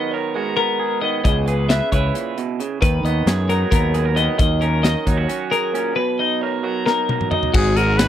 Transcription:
Already playing: clean electric guitar D#3 F#3 B3 G#4 D#5
0.12 clean electric guitar A#4 C#5
0.34 clean electric guitar G#3 F#4 A#4
0.57 clean electric guitar B3 A#4
0.79 clean electric guitar G#4
1.02 clean electric guitar D#3 B3 D#5
1.24 fingered electric bass C#2, clean electric guitar C#3 D#5, kick, closed hi-hat
1.46 clean electric guitar G#4 B4, closed hi-hat
1.69 clean electric guitar B4 E5, snare, closed hi-hat
1.92 fingered electric bass C#2, clean electric guitar E4 B4 C#5, kick, closed hi-hat
2.14 clean electric guitar A#2, closed hi-hat
2.38 clean electric guitar B2, closed hi-hat
2.60 clean electric guitar C#3, closed hi-hat
2.81 fingered electric bass D#2, clean electric guitar D#3 B4, kick, closed hi-hat
3.04 fingered electric bass D#2, clean electric guitar B3 D#5, closed hi-hat
3.26 fingered electric bass F#2, clean electric guitar G#4 C#5, snare, closed hi-hat
3.49 clean electric guitar F#3 D#4 A#4, closed hi-hat
3.71 fingered electric bass D#2, clean electric guitar B3 A#4, kick, closed hi-hat
3.94 clean electric guitar G#4, closed hi-hat
4.05 clean electric guitar A#4
4.15 clean electric guitar D#3 B3 D#5, closed hi-hat
4.38 fingered electric bass D#2, clean electric guitar D#3 D#5, kick, closed hi-hat
4.61 clean electric guitar C#4 A#4, closed hi-hat
4.83 clean electric guitar A#4 D#5, snare, closed hi-hat
5.06 fingered electric bass D#2, clean electric guitar F#3 D#4 C#5, kick, closed hi-hat
5.17 clean electric guitar F#4
5.28 clean electric guitar C#4, closed hi-hat
5.51 clean electric guitar G#4 A#4, closed hi-hat
5.74 clean electric guitar A#2 C#4, closed hi-hat
5.96 clean electric guitar B2 B4
6.19 clean electric guitar D#4 D#5
6.41 clean electric guitar A#4 C#5
6.63 clean electric guitar F#3 F#4 A#4
6.86 clean electric guitar D#4 A#4, snare
7.09 clean electric guitar A#4, high tom
7.21 mid tom
7.31 clean electric guitar F#3 D#4 D#5, mid tom
7.43 floor tom
7.54 fingered electric bass G#1, clean electric guitar G#2 F#4, trumpet G#4, kick, crash
7.76 clean electric guitar F#4 G#4, trumpet A#4, closed hi-hat
7.98 clean electric guitar F#4, trumpet B4, snare, closed hi-hat

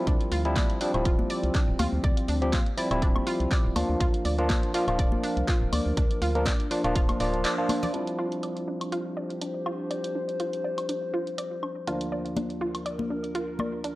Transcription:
Already playing: tine electric piano F3 G3 C4 E4, ambient pad D4
0.07 fm bass D2, ambient pad C4, synth arpeggio sound D4, kick, closed hi-hat
0.21 closed hi-hat
0.32 fm bass D2, synth arpeggio sound F4, open hi-hat
0.45 tine electric piano F3 G3 C4 E4, closed hi-hat
0.56 synth arpeggio sound D5, kick, clap, closed hi-hat, high conga
0.67 ambient pad G4, closed hi-hat
0.81 tine electric piano F3 G3 C4 D4, synth arpeggio sound D4, open hi-hat
0.94 fm bass D1, tine electric piano F3 G3 C4 E4, closed hi-hat, high woodblock
1.05 synth arpeggio sound F4, kick, closed hi-hat
1.19 high conga
1.30 synth arpeggio sound D5, open hi-hat
1.43 fm bass C2, closed hi-hat
1.55 synth arpeggio sound D4, kick, clap, closed hi-hat
1.68 fm bass D1
1.79 fm bass D2, synth arpeggio sound F4, open hi-hat, high conga, high woodblock
1.93 fm bass D2
2.04 fm bass D2, synth arpeggio sound D5, kick, closed hi-hat
2.17 closed hi-hat
2.28 fm bass D2, synth arpeggio sound D4, open hi-hat
2.42 tine electric piano F3 G3 C4 G4, closed hi-hat
2.53 synth arpeggio sound F4, kick, clap, closed hi-hat, high conga
2.66 closed hi-hat
2.77 tine electric piano F3 G3 C4 E4, synth arpeggio sound D5, open hi-hat
2.91 fm bass D1, tine electric piano F3 G3 C4 E4, closed hi-hat, high woodblock
3.02 synth arpeggio sound D4, kick, closed hi-hat
3.16 high conga, high woodblock
3.27 synth arpeggio sound F4, open hi-hat
3.40 fm bass C2, closed hi-hat
3.51 synth arpeggio sound D5, kick, clap, closed hi-hat
3.65 fm bass D1
3.76 fm bass D2, tine electric piano F3 A#3 D4 F4, synth arpeggio sound D4, open hi-hat, high conga, high woodblock
3.89 fm bass D2
4.00 fm bass D2, ambient pad D4, synth arpeggio sound F4, kick, closed hi-hat
4.14 closed hi-hat
4.25 fm bass D2, synth arpeggio sound D5, open hi-hat
4.38 tine electric piano F3 A#3 D4 F4, closed hi-hat
4.50 synth arpeggio sound D4, kick, clap, closed hi-hat, high conga
4.55 ambient pad A#4
4.63 closed hi-hat
4.74 tine electric piano F3 A#3 D4 F4, synth arpeggio sound F4, open hi-hat
4.88 fm bass D1, tine electric piano F3 A#3 D4 F4, closed hi-hat, high woodblock
4.99 synth arpeggio sound D5, kick, closed hi-hat
5.12 high conga
5.23 synth arpeggio sound D4, open hi-hat
5.37 fm bass C2, closed hi-hat
5.48 synth arpeggio sound F4, kick, clap, closed hi-hat
5.61 fm bass D1
5.73 fm bass D2, synth arpeggio sound D5, open hi-hat, high conga, high woodblock
5.86 fm bass D2
5.97 fm bass D2, synth arpeggio sound D4, kick, closed hi-hat
6.11 closed hi-hat
6.22 fm bass D2, synth arpeggio sound F4, open hi-hat
6.35 tine electric piano F3 A#3 D4 A#4, closed hi-hat
6.45 synth arpeggio sound D5, kick, clap, closed hi-hat, high conga
6.60 closed hi-hat
6.71 tine electric piano F3 A#3 D4 F4, synth arpeggio sound D4, open hi-hat
6.84 fm bass D1, tine electric piano F3 A#3 D4 F4, closed hi-hat, high woodblock
6.95 synth arpeggio sound F4, kick, closed hi-hat
7.09 closed hi-hat, high conga, high woodblock
7.20 fm bass D1, tine electric piano F3 A#3 D4 F4, synth arpeggio sound D5, open hi-hat
7.34 closed hi-hat
7.45 synth arpeggio sound D5, clap, closed hi-hat
7.58 tine electric piano F3 A#3 D4 F4
7.69 synth arpeggio sound D4, open hi-hat, high conga, high woodblock
7.83 synth arpeggio sound D5, open hi-hat, low conga
7.94 tine electric piano F3 G3 C4 D4 E4, synth arpeggio sound D4, closed hi-hat
8.07 closed hi-hat
8.19 synth arpeggio sound F4
8.32 ambient pad G4, closed hi-hat
8.43 ambient pad C5, synth arpeggio sound D5, closed hi-hat
8.57 closed hi-hat
8.68 synth arpeggio sound D4
8.81 closed hi-hat, high woodblock
8.92 synth arpeggio sound F4, closed hi-hat
9.17 synth arpeggio sound D5
9.30 closed hi-hat
9.41 synth arpeggio sound D4, closed hi-hat
9.66 synth arpeggio sound F4, high woodblock
9.91 synth arpeggio sound D5, closed hi-hat
10.04 closed hi-hat
10.15 synth arpeggio sound D4
10.29 closed hi-hat
10.40 synth arpeggio sound F4, closed hi-hat
10.53 closed hi-hat
10.64 synth arpeggio sound D5
10.78 closed hi-hat, high woodblock
10.89 synth arpeggio sound D4, closed hi-hat
11.14 synth arpeggio sound F4
11.27 closed hi-hat
11.38 synth arpeggio sound D5, closed hi-hat
11.63 synth arpeggio sound D4, high woodblock
11.87 tine electric piano D2 F3 A#3 D4 F4, synth arpeggio sound F4, closed hi-hat
12.01 closed hi-hat
12.12 synth arpeggio sound D5
12.26 closed hi-hat
12.35 synth arpeggio sound D4, ambient pad A#4, closed hi-hat, high conga
12.50 closed hi-hat
12.61 synth arpeggio sound F4
12.75 closed hi-hat, high woodblock
12.86 synth arpeggio sound D5, closed hi-hat
12.99 high conga
13.10 synth arpeggio sound D4
13.24 closed hi-hat
13.35 synth arpeggio sound F4, closed hi-hat
13.59 synth arpeggio sound D5, high conga, high woodblock
13.84 synth arpeggio sound D4, closed hi-hat

